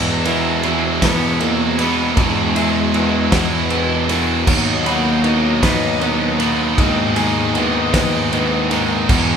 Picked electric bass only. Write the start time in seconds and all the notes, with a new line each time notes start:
Already playing: E2
1.02 E2
2.17 E2
3.32 E2
4.47 D#2
5.63 D#2
6.78 D#2
7.94 D#2
9.09 E2